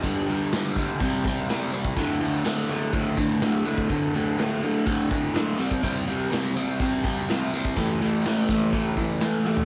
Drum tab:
CC |x-x-x-x-x-x-x-x-|x-x-x-x-x-x-x-x-|x-x-x-x-x-x-x-x-|x-x-x-x-x-x-x-x-|
SD |----o-------o---|----o-------o---|----o-------o---|----o-------o---|
FT |----------------|----------------|----------------|----------------|
BD |o-----o-o-o----o|o-------o-o----o|o-------o-o----o|o-------o-o----o|

CC |x-x-x-x-x-x-x---|
SD |----o-------o-o-|
FT |---------------o|
BD |o-----o-o-o-----|